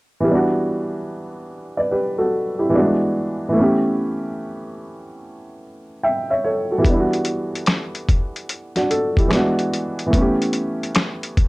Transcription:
0.20 E3 G3
0.28 B3 D4
0.35 F#4
1.77 B4 D5
1.91 G4 B4
2.18 F#4 A4
2.59 E4 G4
2.70 E3 G3
2.74 B3 D4 F#4
2.78 G#3
3.49 E3 A3
3.56 B3 C#4
3.64 G4
6.03 E5 G5
6.30 C#5 E5
6.44 A4 C#5
6.71 F#4 A4
6.78 E3
6.82 G3 B3, kick, closed hi-hat
6.89 D4 E4
7.00 F#4
7.13 closed hi-hat
7.25 closed hi-hat
7.55 closed hi-hat
7.66 finger snap, snare, closed hi-hat
7.95 closed hi-hat
8.09 kick, closed hi-hat
8.36 closed hi-hat
8.49 closed hi-hat
8.76 D4 F#4, snare, closed hi-hat
8.90 F#4 A4, closed hi-hat
9.17 E4 G4, kick, closed hi-hat
9.28 E3 G#3, finger snap, snare
9.32 B3 D4 F#4, closed hi-hat
9.59 closed hi-hat
9.74 closed hi-hat
9.99 closed hi-hat
10.06 E3 A3
10.13 B3, kick, closed hi-hat
10.18 C#4 G4
10.42 closed hi-hat
10.53 closed hi-hat
10.83 closed hi-hat
10.95 finger snap, snare, closed hi-hat
11.23 closed hi-hat
11.37 kick, closed hi-hat

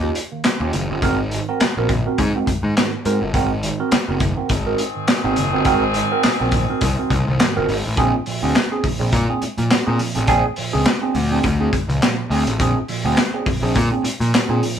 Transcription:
0.03 C#4 F4 G4
0.15 closed hi-hat
0.32 D#3 A#3
0.44 snare, clap, closed hi-hat
0.60 D#2 C#4 F4 G4
0.73 F#1 D#3 A#3, closed hi-hat
0.90 G1 C#4 F4 G4
1.02 G#1 C4 F#4 A#4, kick, closed hi-hat
1.31 G#2 D#3, closed hi-hat
1.48 C4 F#4 A#4
1.60 muted picked electric bass stroke, snare, clap, closed hi-hat
1.77 A#1 C4 F#4 A#4
1.89 G#2 D#3, kick, closed hi-hat
2.06 C4 F#4 A#4
2.18 G#2, kick, closed hi-hat
2.35 C4 F#4 A#4
2.47 muted picked electric bass stroke, kick, closed hi-hat
2.63 G#2 D#3
2.77 G#2 D#3, snare, clap, closed hi-hat
3.05 G#2 C4 F#4 A#4, closed hi-hat
3.22 G1 F#4 A#4
3.34 G#1 C4 F#4 A#4, kick, closed hi-hat
3.63 G#2 D#3, closed hi-hat
3.80 C4 F#4 A#4
3.91 muted picked electric bass stroke, snare, clap, closed hi-hat
4.08 F#1 C4 F#4 A#4
4.20 G#2 D#3, kick, closed hi-hat
4.37 C4 F#4 A#4
4.49 G#1 D#3 C4 G#4, kick, closed hi-hat
4.66 C4 F#4 A#4
4.78 closed hi-hat
4.95 G#2 D#3
5.08 snare, clap, closed hi-hat
5.24 G#1 C4 F#4 A#4
5.36 F#1 G#2 D#3, closed hi-hat
5.53 G1 C4 F#4 A#4
5.65 G#1 C4 F#4 A#4, kick, closed hi-hat
5.94 G#2 D#3, closed hi-hat
6.11 C4 F#4 A#4
6.23 muted picked electric bass stroke, snare, clap, closed hi-hat
6.40 A#1 C4 F#4 A#4
6.52 G#2 D#3, kick, closed hi-hat
6.70 C4 F#4 A#4
6.81 C2, kick, closed hi-hat
6.98 C4 F#4 A#4
7.10 C2, kick, closed hi-hat
7.27 C2 G#2 D#3
7.40 G#2 D#3, snare, clap, closed hi-hat
7.56 G1 C4 F#4 A#4
7.69 G#1 F#4 A#4, open hi-hat
7.86 A1
7.97 A#1 C4 D4 G#4, kick, closed hi-hat
8.26 A#2 F3, open hi-hat
8.42 D2 C4 D4 G#4
8.55 snare, clap, closed hi-hat
8.71 C4 D4 G#4
8.83 A#2 F3, muted picked electric bass stroke, kick, open hi-hat
8.99 A#1 C4 D4 G#4
9.12 A#2, kick, closed hi-hat
9.28 C4 D4 G#4
9.42 muted picked electric bass stroke, closed hi-hat
9.57 A#2 F3, closed hi-hat
9.70 snare, clap, closed hi-hat
9.86 A#2 C4 D4 G#4
9.99 A#2 F3, open hi-hat
10.15 A1 C4 D4 G#4, closed hi-hat
10.27 A#1 C4 D4 G#4, kick, closed hi-hat
10.56 A#2 F3, open hi-hat
10.73 C#2 C4 D4 G#4
10.85 snare, clap, closed hi-hat
11.01 C4 D4 G#4
11.15 D2 A#2 F3, open hi-hat
11.31 C4 D4 G#4
11.43 D2, kick, closed hi-hat
11.60 C4 D4 G#4
11.73 kick, closed hi-hat
11.89 C#2 A#2 F3, closed hi-hat
12.02 A#2 F3, snare, clap, closed hi-hat
12.30 D2 C4 D4 G#4, open hi-hat
12.47 A1 D4 G#4, closed hi-hat
12.60 A#1 C4 D4 G#4, kick, closed hi-hat
12.88 A#2 F3, open hi-hat
13.05 D2 C4 D4 G#4
13.17 snare, clap, closed hi-hat
13.34 C4 D4 G#4
13.46 A#2 F3, muted picked electric bass stroke, kick, open hi-hat
13.62 A#1 C4 D4 G#4
13.75 A#2, kick, closed hi-hat
13.91 C4 D4 G#4
14.03 muted picked electric bass stroke, closed hi-hat
14.20 A#2 F3, closed hi-hat
14.34 snare, clap, closed hi-hat
14.49 A#2 C4 D4 G#4
14.63 A#2 F3, open hi-hat

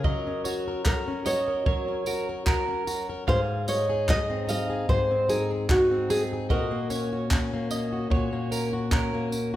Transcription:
Already playing: C#3 C#4 F4 A#4
0.04 F#3 A#4 D#5, kick
0.27 C#4
0.44 F#4 C#5, tambourine
0.68 A#4
0.85 F#4 A#4, kick, clap
1.08 C#4
1.26 F#4 C#5 D#5, tambourine
1.48 A#4
1.66 F#3 A#4 C#5, kick
1.88 C#4
2.06 F#4 A#4, tambourine
2.29 A#4
2.46 F#4 A#4, kick, clap
2.68 C#4
2.87 F#4, tambourine
3.09 A#4
3.27 G#2 G#4 C5 F5, kick
3.68 D#4 C#5 D#5, tambourine
3.90 G#4
4.08 D#4 D#5, kick, clap
4.30 C4
4.47 D#4 D#5 F5, tambourine
4.70 G#4
4.89 G#2 G#4 C5, kick
5.11 C4
5.29 D#4 G#4 A#4, tambourine
5.51 G#4
5.69 D#4 F#4, kick, clap
5.91 C4
6.10 D#4 G#4, tambourine
6.33 G#4
6.50 A#2 F#4 A#4 D#5, kick
6.71 A#3
6.90 C#4 C#5, tambourine
7.13 F#4
7.31 C#4, kick, clap
7.54 A#3
7.71 C#4 D#5, tambourine
7.92 F#4
8.10 A#2 F#4 C#5, kick
8.33 A#3
8.51 C#4 A#4, tambourine
8.73 F#4
8.91 C#4 A#4, kick, clap
9.14 A#3
9.32 C#4, tambourine

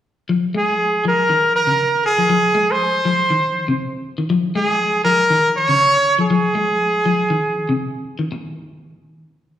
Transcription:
0.29 F3
0.54 G#3 G#4
1.05 F3 A#4
1.29 D#3
1.56 A#4
1.67 C#3
2.06 G#4
2.18 F3
2.30 F3
2.55 G#3
2.71 C5
3.05 F3
3.30 D#3
3.68 C3
4.18 D#3
4.30 F3
4.55 G#3 G#4
5.04 F3 A#4
5.30 D#3
5.57 C#5
5.69 C#3
6.19 F3 G#4
6.30 F3
6.55 G#3
7.06 F3
7.30 D#3
7.69 C3
8.19 D#3
8.32 muted clean electric guitar stroke

